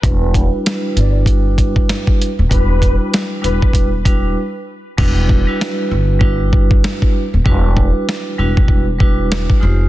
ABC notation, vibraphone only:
X:1
M:4/4
L:1/16
Q:"Swing 16ths" 1/4=97
K:Em
V:1 name="Vibraphone"
[G,DEFB]3 [G,DEFB]4- [G,DEFB] [G,DEFB]6 z2 | [G,DEFB]6 [G,DEFB]3 z [G,DEFB]2 z4 | [G,DEFB]3 [G,DEFB]4- [G,DEFB] [G,DEFB]6 z2 | [G,DEFB]6 [G,DEFB]3 z [G,DEFB]4 [_A,_E=FGc]2 |]